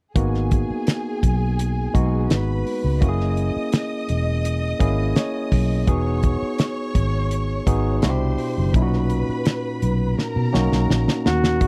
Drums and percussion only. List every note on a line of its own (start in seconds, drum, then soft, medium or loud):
0.16 kick loud
0.16 closed hi-hat medium
0.34 snare soft
0.51 kick medium
0.51 closed hi-hat medium
0.87 snare loud
0.87 closed hi-hat medium
1.23 kick medium
1.23 closed hi-hat medium
1.59 closed hi-hat medium
1.95 kick medium
1.95 closed hi-hat medium
2.30 snare loud
2.30 closed hi-hat medium
2.67 open hi-hat medium
3.02 kick loud
3.02 closed hi-hat medium
3.20 snare soft
3.37 closed hi-hat medium
3.72 snare loud
3.72 closed hi-hat medium
4.09 closed hi-hat medium
4.45 closed hi-hat medium
4.80 kick medium
4.80 closed hi-hat medium
5.16 snare loud
5.16 closed hi-hat medium
5.52 kick medium
5.52 open hi-hat medium
5.87 kick loud
5.87 closed hi-hat medium
6.23 kick medium
6.23 closed hi-hat medium
6.58 snare loud
6.58 closed hi-hat medium
6.95 kick medium
6.95 closed hi-hat medium
7.31 closed hi-hat medium
7.67 kick medium
7.67 closed hi-hat medium
8.02 snare loud
8.02 closed hi-hat medium
8.38 open hi-hat medium
8.74 kick loud
8.74 closed hi-hat medium
8.93 snare soft
9.10 closed hi-hat medium
9.45 snare loud
9.45 closed hi-hat medium
9.82 closed hi-hat medium
10.19 snare medium
10.54 snare medium
10.72 snare medium
10.90 snare medium
11.08 snare medium
11.26 snare medium
11.44 snare medium
11.61 kick medium
11.61 closed hi-hat medium